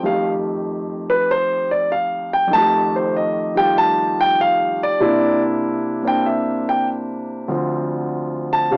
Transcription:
0.03 2.46 F2 soft
0.03 2.49 D#3 soft
0.03 2.52 A3 soft
0.03 2.53 G4 medium
0.03 0.31 F5 medium
1.10 1.28 B4 medium
1.31 1.71 C5 medium
1.71 1.90 D5 medium
1.92 2.33 F5 medium
2.33 2.52 G5 medium
2.47 4.98 F2 medium
2.47 3.54 D#3 medium
2.53 5.01 A3 medium
2.53 2.94 A5 loud
2.58 5.03 G4 medium
2.96 3.14 C5 medium
3.17 3.57 D#5 medium
3.55 5.00 D#3 soft
3.55 5.01 G3 soft
3.55 5.02 F4 medium
3.55 3.76 G5 medium
3.78 4.19 A5 medium
4.21 4.39 G5 medium
4.41 4.81 F5 medium
4.83 5.40 D5 medium
5.00 7.48 C3 medium
5.00 6.01 A#3 medium
5.00 6.04 D4 medium
5.00 7.49 E4 medium
6.03 7.47 A#3 soft
6.03 7.47 C4 soft
6.03 7.49 D4 soft
6.07 6.25 G5 medium
6.26 6.67 E5 medium
6.69 6.87 G5 medium
7.48 8.77 D2 medium
7.48 8.77 D3 soft
7.48 8.77 F3 medium
7.48 8.77 C4 medium
8.53 8.72 A5 medium
8.71 8.77 C3 soft
8.71 8.77 D4 soft
8.71 8.77 F4 soft
8.71 8.77 F5 medium

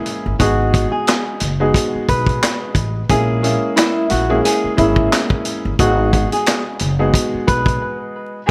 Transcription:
0.00 0.32 G#3 medium
0.00 0.32 A#3 medium
0.00 0.33 C#4 medium
0.00 0.33 E4 medium
0.00 0.33 G#4 loud
0.06 closed hi-hat medium
0.26 0.38 G1 medium
0.39 0.84 G#1 medium
0.39 1.49 G#3 medium
0.39 1.49 B3 medium
0.39 1.50 D#4 medium
0.39 0.89 F#4 medium
0.39 1.50 F#4 medium
0.39 1.50 G#4 loud
0.39 kick loud
0.39 closed hi-hat medium
0.74 kick loud
0.74 closed hi-hat medium
0.92 1.22 G#4 medium
1.07 snare loud
1.07 clap medium
1.07 closed hi-hat loud
1.40 1.70 F#1 medium
1.40 closed hi-hat medium
1.60 2.99 G#3 loud
1.60 2.99 B3 medium
1.60 2.99 D#4 medium
1.60 2.99 F#4 medium
1.60 2.99 G#4 loud
1.74 kick medium
1.74 closed hi-hat loud
1.95 muted upright bass stroke soft
2.09 2.37 B1 loud
2.09 2.58 B4 medium
2.09 kick medium
2.09 closed hi-hat medium
2.27 kick loud
2.27 closed hi-hat soft
2.43 snare loud
2.43 clap loud
2.43 closed hi-hat medium
2.75 3.04 A1 medium
2.75 kick medium
2.75 closed hi-hat medium
3.09 3.54 A#1 loud
3.09 3.41 G#3 medium
3.09 3.41 A#3 medium
3.09 3.41 C#4 medium
3.09 3.41 E4 medium
3.09 3.73 G#4 loud
3.09 3.41 G#4 loud
3.09 kick loud
3.09 closed hi-hat medium
3.42 4.22 G#3 medium
3.42 4.22 A#3 medium
3.42 4.22 C#4 medium
3.42 4.22 E4 medium
3.42 4.22 G#4 loud
3.42 closed hi-hat medium
3.76 4.07 E4 medium
3.76 snare loud
3.76 clap loud
3.76 closed hi-hat medium
4.10 4.39 A#1 medium
4.10 4.41 F#4 medium
4.10 closed hi-hat medium
4.29 4.74 G#3 medium
4.29 4.74 A#3 medium
4.29 4.75 C#4 medium
4.29 4.75 E4 medium
4.29 4.75 G#4 loud
4.45 4.75 G#4 medium
4.45 closed hi-hat loud
4.64 muted upright bass stroke soft
4.77 5.07 G#1 medium
4.77 5.72 G#3 medium
4.77 5.72 A#3 medium
4.77 5.72 C#4 medium
4.77 5.72 E4 loud
4.77 5.08 E4 medium
4.77 5.72 G#4 loud
4.77 kick medium
4.77 closed hi-hat medium
4.96 kick loud
5.12 snare loud
5.12 clap medium
5.12 closed hi-hat medium
5.30 kick medium
5.45 closed hi-hat medium
5.65 5.77 G1 medium
5.79 6.24 G#1 loud
5.79 6.89 G#3 medium
5.79 6.89 B3 medium
5.79 6.89 D#4 medium
5.79 6.29 F#4 medium
5.79 6.89 F#4 medium
5.79 6.89 G#4 loud
5.79 kick loud
5.79 closed hi-hat medium
6.13 kick loud
6.13 closed hi-hat medium
6.32 6.63 G#4 medium
6.32 closed hi-hat medium
6.46 snare loud
6.46 clap medium
6.46 closed hi-hat loud
6.79 7.09 F#1 medium
6.79 closed hi-hat medium
6.99 8.38 G#3 loud
6.99 8.38 B3 medium
6.99 8.38 D#4 medium
6.99 8.38 F#4 medium
6.99 8.39 G#4 loud
7.14 kick loud
7.14 closed hi-hat loud
7.34 muted upright bass stroke soft
7.47 7.76 B1 loud
7.47 7.97 B4 medium
7.47 kick medium
7.47 closed hi-hat medium
7.66 kick loud
7.66 closed hi-hat soft

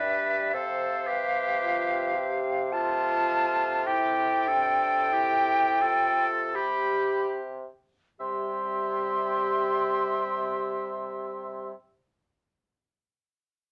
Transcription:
0.00 0.53 G2 medium
0.00 1.33 G4 medium
0.00 0.54 B4 medium
0.00 0.55 D5 medium
0.00 0.55 E5 loud
0.54 7.66 C3 loud
0.54 1.08 A4 medium
0.54 1.08 C5 medium
0.54 2.74 F5 loud
1.07 2.43 G4 loud
1.07 2.43 B4 medium
1.62 2.18 F4 loud
2.16 2.74 G4 loud
2.72 3.86 F4 loud
2.72 3.88 F4 loud
2.72 6.56 A4 loud
2.72 3.84 A5 loud
3.85 4.49 E4 loud
3.85 4.50 G4 loud
3.85 6.28 G5 loud
4.47 5.14 D4 loud
4.47 5.14 A4 loud
5.13 5.83 E4 loud
5.13 5.83 G4 loud
5.81 6.57 F4 loud
5.81 6.57 A4 loud
6.54 7.70 G4 medium
6.54 7.70 G4 loud
6.54 7.37 G4 medium
6.54 7.34 B5 loud
8.20 11.72 C3 loud
8.20 11.73 G3 medium
8.20 11.72 G4 medium
8.20 11.73 E5 medium
8.20 11.73 C6 loud

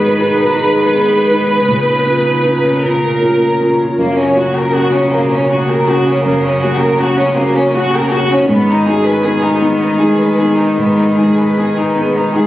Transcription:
0.00 1.65 G#2 medium
0.00 1.65 D#3 medium
0.00 0.14 B3 soft
0.00 1.68 B3 medium
0.00 1.68 D#4 medium
0.00 0.15 G#4 medium
0.00 1.68 B4 medium
0.00 2.78 B4 medium
0.19 0.52 D#4 soft
0.19 0.52 G#4 medium
0.56 0.89 D#4 soft
0.56 0.90 G#4 medium
0.94 1.27 B3 soft
0.94 1.27 G#4 medium
1.31 1.65 D#4 soft
1.31 1.65 G#4 soft
1.68 3.94 A#2 medium
1.68 3.73 C#3 medium
1.68 3.98 C#4 medium
1.68 3.98 F4 medium
1.68 3.98 A#5 medium
2.07 2.41 C#4 soft
2.07 2.41 F4 soft
2.46 2.79 C#4 soft
2.46 2.79 F4 soft
2.83 3.17 C#4 soft
2.83 3.18 F4 soft
2.83 3.78 A#4 medium
3.22 3.56 A#3 soft
3.22 3.56 F4 soft
3.60 3.94 C#4 soft
3.60 3.95 F4 soft
3.98 6.21 F#2 medium
3.98 8.45 C#3 medium
3.98 4.16 A#3 medium
3.98 8.45 C#4 medium
3.98 8.49 F#4 medium
3.98 8.45 A#4 medium
4.17 4.36 C#4 soft
4.36 4.70 A#3 soft
4.36 4.70 F#4 soft
4.36 4.56 F#4 soft
4.56 4.74 A#4 soft
4.74 5.08 C#4 soft
4.74 4.93 F#4 medium
4.74 5.09 F#4 soft
4.93 5.12 C#4 soft
5.12 5.31 A#3 medium
5.12 5.46 C#4 soft
5.12 5.46 F#4 soft
5.32 5.50 C#4 soft
5.50 5.84 A#3 soft
5.50 5.84 F#4 soft
5.50 5.69 F#4 soft
5.69 5.88 A#4 soft
5.87 6.21 C#4 soft
5.87 6.21 F#4 soft
5.87 6.07 F#4 medium
6.07 6.25 C#4 soft
6.25 8.45 F#2 soft
6.25 6.42 A#3 soft
6.44 6.62 C#4 soft
6.62 6.97 A#3 soft
6.62 6.81 F#4 medium
6.62 6.97 F#4 soft
6.79 6.99 A#4 medium
6.99 7.33 C#4 soft
6.99 7.18 F#4 medium
6.99 7.33 F#4 medium
7.17 7.36 C#4 medium
7.37 7.55 A#3 medium
7.37 7.71 C#4 medium
7.37 7.71 F#4 soft
7.55 7.74 C#4 medium
7.74 8.07 A#3 soft
7.74 8.08 F#4 medium
7.74 7.93 F#4 medium
7.93 8.12 A#4 medium
8.11 8.45 C#4 soft
8.11 8.45 F#4 medium
8.11 8.30 F#4 medium
8.31 8.49 C#4 medium
8.48 10.73 G#2 medium
8.48 12.47 D#3 medium
8.48 8.66 B3 medium
8.48 12.47 D#4 medium
8.48 12.47 G#4 medium
8.48 12.47 B4 medium
8.70 8.87 D#4 medium
8.86 9.20 G#3 soft
8.86 9.20 D#4 soft
8.86 9.06 G#4 medium
9.06 9.24 B4 medium
9.24 9.57 B3 soft
9.24 9.58 D#4 medium
9.24 9.42 G#4 medium
9.42 9.61 D#4 medium
9.61 9.80 B3 medium
9.61 9.96 B3 soft
9.61 9.96 D#4 soft
9.81 9.99 D#4 soft
9.99 10.34 G#3 soft
9.99 10.34 D#4 soft
9.99 10.19 G#4 soft
10.20 10.38 B4 soft
10.37 10.73 B3 soft
10.37 10.73 D#4 soft
10.37 10.57 G#4 soft
10.56 10.76 D#4 soft
10.77 12.47 G#2 soft
10.77 10.95 B3 soft
10.97 11.16 D#4 soft
11.17 11.52 G#3 soft
11.17 11.53 D#4 soft
11.17 11.36 G#4 soft
11.36 11.56 B4 soft
11.56 11.92 B3 soft
11.56 11.92 D#4 soft
11.56 11.76 G#4 soft
11.76 11.96 D#4 soft
11.95 12.15 B3 soft
11.95 12.32 B3 soft
11.95 12.32 D#4 soft
12.16 12.36 D#4 soft
12.35 12.47 G#3 soft
12.35 12.47 D#4 soft
12.35 12.47 G#4 soft

